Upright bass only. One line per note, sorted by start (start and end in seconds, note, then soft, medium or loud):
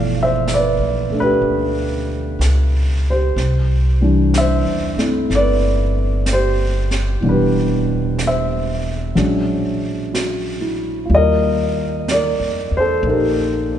0.00 0.75 G1 medium
0.79 1.09 B1 soft
1.10 1.40 D2 soft
1.42 2.35 D2 medium
2.39 3.32 C#2 medium
3.36 4.61 C2 medium
4.65 4.95 E2 soft
4.97 5.27 G2 soft
5.30 7.18 G1 medium
7.22 9.12 E1 medium
9.16 11.06 A#1 medium
11.10 12.35 D#2 medium
12.40 12.70 F2 soft
12.71 13.02 E2 medium
13.03 13.79 A#1 medium